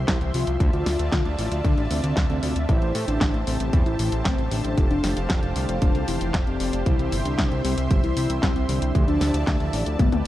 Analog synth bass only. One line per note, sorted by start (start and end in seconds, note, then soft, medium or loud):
0.08 0.19 C2 loud
0.21 0.32 C2 medium
0.34 0.45 C2 loud
0.47 0.58 C2 medium
0.60 0.71 D2 loud
0.73 0.84 D2 medium
0.86 0.97 D2 medium
0.99 1.10 D2 medium
1.12 1.23 D2 loud
1.25 1.36 D2 medium
1.39 1.49 A1 loud
1.52 1.62 D2 medium
1.65 1.75 D2 loud
1.78 1.88 A1 medium
1.91 2.01 D2 medium
2.04 2.14 D2 medium
2.17 2.27 D2 loud
2.30 2.40 D2 medium
2.43 2.54 D2 loud
2.56 2.67 D2 medium
2.69 2.80 A1 loud
2.82 2.93 A1 medium
2.95 3.06 A2 loud
3.08 3.19 A1 medium
3.21 3.32 A1 loud
3.34 3.45 A1 medium
3.47 3.58 A1 loud
3.60 3.71 A1 medium
3.73 3.84 E2 loud
3.86 3.97 A1 medium
3.99 4.10 A1 loud
4.12 4.23 A1 medium
4.25 4.36 A1 loud
4.39 4.49 A1 medium
4.52 4.62 A1 loud
4.65 4.75 A1 medium
4.78 4.88 F1 loud
4.91 5.01 F1 medium
5.04 5.14 F1 loud
5.17 5.27 F1 medium
5.30 5.40 F1 loud
5.43 5.54 F1 medium
5.56 5.67 C2 medium
5.69 5.80 F1 medium
5.82 5.93 F1 loud
5.95 6.06 C2 medium
6.08 6.19 F1 medium
6.21 6.32 F1 medium
6.34 6.45 F1 loud
6.47 6.58 F1 medium
6.60 6.71 F1 loud
6.73 6.84 F1 medium
6.86 6.97 C2 loud
6.99 7.10 C2 medium
7.12 7.23 G1 loud
7.25 7.36 C2 medium
7.39 7.49 C2 loud
7.52 7.62 C2 medium
7.65 7.75 C2 medium
7.78 7.88 C2 medium
7.91 8.01 G1 loud
8.04 8.14 C2 medium
8.17 8.27 C2 loud
8.30 8.40 C2 medium
8.43 8.54 C2 loud
8.56 8.67 C2 medium
8.69 8.80 C2 loud
8.82 8.93 C2 medium
8.95 9.06 D2 loud
9.08 9.19 D2 medium
9.21 9.32 D2 loud
9.34 9.45 D2 medium
9.47 9.58 D2 loud
9.60 9.71 D2 medium
9.73 9.84 A1 loud
9.86 9.97 D2 medium
9.99 10.10 G1 loud
10.12 10.23 D2 medium